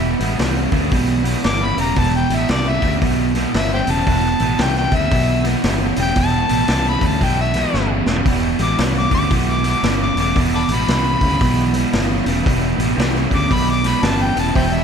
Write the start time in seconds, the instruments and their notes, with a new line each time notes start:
Already playing: fingered electric bass E1, distorted electric guitar E2 B2, tonewheel organ E4 G4, harmonica E5
0.18 fingered electric bass A1, distorted electric guitar E2 B2, tonewheel organ B3 E4 G4, open hi-hat
0.38 fingered electric bass C2, distorted electric guitar E2 C#3, tonewheel organ B3 E4 G4, snare, open hi-hat
0.71 fingered electric bass D2, distorted electric guitar E2 C#3, tonewheel organ B3 E4 A4, kick, open hi-hat
0.91 fingered electric bass B1, distorted electric guitar E2 B2, tonewheel organ B3 E4 G4, kick, open hi-hat
1.23 distorted electric guitar E2 B2, tonewheel organ B3 E4 G4, open hi-hat
1.43 fingered electric bass G1, distorted electric guitar E2 C#3, tonewheel organ B3 E4 G4, harmonica D6, snare, open hi-hat
1.64 harmonica B5
1.76 fingered electric bass E1, distorted electric guitar E2 C#3, tonewheel organ B3 E4 G4, open hi-hat
1.80 harmonica A#5
1.96 fingered electric bass E1, distorted electric guitar E2 B2, tonewheel organ B3 E4 G4, harmonica A5, kick, open hi-hat
2.16 harmonica G5
2.30 fingered electric bass A1, distorted electric guitar E2 B2, tonewheel organ B3 E4 G4, open hi-hat
2.35 harmonica E5
2.49 fingered electric bass C2, distorted electric guitar E2 C#3, tonewheel organ B3 E4 G4, harmonica D5, snare, open hi-hat
2.69 harmonica E5
2.81 fingered electric bass D2, distorted electric guitar E2 C#3, tonewheel organ B3 E4 G4, kick, open hi-hat
3.00 fingered electric bass B1, distorted electric guitar E2 B2, tonewheel organ B3 E4 G4, kick, open hi-hat
3.33 distorted electric guitar E2 B2, tonewheel organ B3 E4 G4, snare, open hi-hat
3.54 fingered electric bass G1, distorted electric guitar E2 C#3, tonewheel organ B3 E4 G4, harmonica E5, snare, open hi-hat
3.74 harmonica C5 E5 G5
3.87 fingered electric bass E1, distorted electric guitar E2 C#3, tonewheel organ B3 E4 G4, harmonica A5, open hi-hat
4.06 fingered electric bass E1, distorted electric guitar E2 B2, tonewheel organ B3 E4 F#4, kick, open hi-hat
4.40 fingered electric bass A1, distorted electric guitar E2 B2, tonewheel organ B3 E4 G4, open hi-hat
4.58 fingered electric bass C2, distorted electric guitar E2 C#3, tonewheel organ B3 E4 G4, harmonica G5, snare, open hi-hat
4.76 harmonica G5, snare
4.91 fingered electric bass D2, distorted electric guitar E2 C#3, tonewheel organ B3 E4 G4, kick, open hi-hat
4.95 harmonica E5
5.09 fingered electric bass B1, distorted electric guitar E2 B2, tonewheel organ B3 E4 G4, kick, open hi-hat
5.42 distorted electric guitar E2 B2, tonewheel organ B3 E4 G4, snare, open hi-hat
5.61 fingered electric bass G1, distorted electric guitar E2 C#3, tonewheel organ B3 E4 G4, snare, open hi-hat
5.95 fingered electric bass E1, distorted electric guitar E2 C#3, tonewheel organ B3 E4 G4, open hi-hat
6.02 harmonica G5
6.15 fingered electric bass E1, distorted electric guitar E2 B2, tonewheel organ B3 E4 G4, kick, open hi-hat
6.20 harmonica A5
6.48 fingered electric bass A1, distorted electric guitar E2 B2, tonewheel organ B3 E4 G4, open hi-hat
6.68 fingered electric bass C2, distorted electric guitar E2 C#3, tonewheel organ B3 E4 G4, snare, open hi-hat
6.89 harmonica B5
7.00 fingered electric bass D2, distorted electric guitar E2 C#3, tonewheel organ B3 E4 G4, kick, open hi-hat
7.06 harmonica A5
7.21 fingered electric bass B1, distorted electric guitar E2 B2, tonewheel organ B3 E4 G4, harmonica G5, kick, open hi-hat
7.41 harmonica E5
7.54 distorted electric guitar E2 B2, tonewheel organ B3 E4 G4, snare, open hi-hat
7.73 fingered electric bass G1, distorted electric guitar E2 C#3, tonewheel organ B3 E4 F#4, snare
8.06 fingered electric bass E1, distorted electric guitar E2 C#3, tonewheel organ B3 E4 G4, snare
8.16 floor tom
8.25 fingered electric bass E1, distorted electric guitar E2 B2, tonewheel organ B3 E4 G4, kick, open hi-hat
8.58 fingered electric bass A1, distorted electric guitar E2 B2, tonewheel organ B3 E4 G4, open hi-hat
8.63 harmonica D6
8.77 fingered electric bass C2, distorted electric guitar E2 C#3, tonewheel organ B3 E4 F#4, snare, open hi-hat
8.99 harmonica D6
9.10 fingered electric bass D2, distorted electric guitar E2 C#3, tonewheel organ B3 E4 G4, kick, open hi-hat
9.15 harmonica D6
9.30 fingered electric bass B1, distorted electric guitar E2 B2, tonewheel organ B3 E4 G4, kick, open hi-hat
9.50 harmonica D6
9.63 distorted electric guitar E2 B2, tonewheel organ B3 E4 G4, open hi-hat
9.70 harmonica D6
9.83 fingered electric bass G1, distorted electric guitar E2 C#3, tonewheel organ B3 E4 G4, snare, open hi-hat
10.03 harmonica D6
10.15 fingered electric bass E1, distorted electric guitar E2 C#3, tonewheel organ B3 E4 A4, open hi-hat
10.20 harmonica D6
10.36 fingered electric bass E1, distorted electric guitar E2 B2, tonewheel organ B3 E4 A4, kick, open hi-hat
10.55 harmonica A5 B5 D6
10.68 fingered electric bass A1, distorted electric guitar E2 B2, tonewheel organ B3 E4 G4, open hi-hat
10.74 harmonica B5
10.87 fingered electric bass C2, distorted electric guitar E2 C#3, tonewheel organ B3 E4 G4, snare, open hi-hat
11.20 fingered electric bass D2, distorted electric guitar E2 C#3, tonewheel organ B3 E4 G4, kick, open hi-hat
11.40 fingered electric bass B1, distorted electric guitar E2 B2, tonewheel organ B3 E4 G4, kick, open hi-hat
11.73 distorted electric guitar E2 B2, tonewheel organ B3 E4 G4, open hi-hat
11.90 fingered electric bass G1, tonewheel organ B3 E4 G4, snare, open hi-hat
11.95 distorted electric guitar E2 C#3
12.24 fingered electric bass E1, distorted electric guitar E2 C#3, tonewheel organ B3 E4 G4, open hi-hat
12.43 fingered electric bass E1, distorted electric guitar E2 B2, tonewheel organ B3 E4 G4, kick, open hi-hat
12.75 fingered electric bass A1, distorted electric guitar E2, tonewheel organ B3 E4 G4
12.79 distorted electric guitar B2, open hi-hat
12.95 fingered electric bass C2, distorted electric guitar E2 C#3, tonewheel organ B3 E4 G4
12.99 snare, open hi-hat
13.16 snare
13.29 fingered electric bass D2, distorted electric guitar E2 C#3, tonewheel organ B3 E4 G4, kick, open hi-hat
13.36 harmonica D6
13.48 fingered electric bass B1, distorted electric guitar E2 B2, tonewheel organ B3 E4 G4, kick, open hi-hat
13.53 harmonica B5
13.71 harmonica D6
13.82 distorted electric guitar E2 B2, tonewheel organ B3 E4 G4, snare, open hi-hat
13.87 harmonica B5
14.02 fingered electric bass G1, distorted electric guitar E2 C#3, tonewheel organ B3 E4 G4, harmonica A5, snare, open hi-hat
14.22 harmonica G5
14.35 fingered electric bass E1, distorted electric guitar E2 C#3, tonewheel organ B3 E4 G4, open hi-hat
14.39 harmonica A5
14.55 fingered electric bass E1, distorted electric guitar E2 B2, tonewheel organ B3 E4 G4, harmonica C5 E5 G5, kick, open hi-hat
14.74 harmonica E5